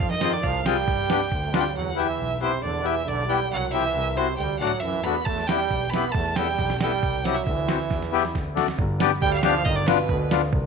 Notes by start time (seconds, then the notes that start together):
0.00 F2 F3
0.10 D#3 D#5, snare
0.21 C4 F4 G#4, snare
0.33 D5
0.43 C2 F3 F5, kick
0.65 G3 C4 F4 G#4 G5, snare
0.87 G2, kick
1.10 B3 D4 G4, snare
1.32 D2, kick
1.45 A3
1.52 G3 B3 D4 F4, snare
1.58 G5
1.73 E2 F#3
1.77 F#5
1.94 E3 B3 E4 G4
1.99 E5
2.19 B1
2.41 C3 B3 E4 G4 C5
2.62 E2 D3 D5
2.83 E3 B3 E4 G4 E5
3.05 B1 D3 D5
3.26 G3 B3 E4 G4 G5
3.49 C2 F#3
3.53 F#5
3.70 E3 C4 E4 G4 E5
3.94 C2
4.16 C3 C4 E4 F#4 C5
4.37 D2 G3 G5
4.59 A2 F#3 A3 D4 F#4 F#5
4.80 F#2 E3 E5
5.04 E2 A3 B3 D4 F#4 B5
5.25 E2 A3 A5, kick
5.38 snare
5.47 G3 B3 E4 G4 G5, snare
5.71 B1, kick
5.90 B3 B5, snare
5.94 B3 E4 G4
6.12 E2 A3 A5, kick
6.29 A3
6.35 G3 B3 E4 A4 G5, snare
6.59 B1, kick, snare
6.70 snare
6.80 G3 B3 E4 A4 G5, snare
7.03 C2, kick
7.24 F#3 C4 E4 G4 F#5, snare
7.34 E5
7.45 D2 E3 E5, kick
7.67 C4 E4 F#4, snare
7.90 E2, kick, snare
8.02 snare
8.12 B3 E4 G4
8.25 snare
8.35 D2, kick, snare
8.55 A3 D4 F#4, snare
8.68 snare
8.79 G1, kick
8.99 B3 D4 G4, snare
9.21 D2 G3 G5, kick
9.33 F5
9.42 F3 B3 D4 G4 F5, snare
9.55 snare
9.65 G1 D#3 D#5, kick
9.76 D5
9.86 B2 B3 D4 F4 B4, snare
10.09 D2, kick
10.31 B3 D4 F4, snare
10.53 C2, kick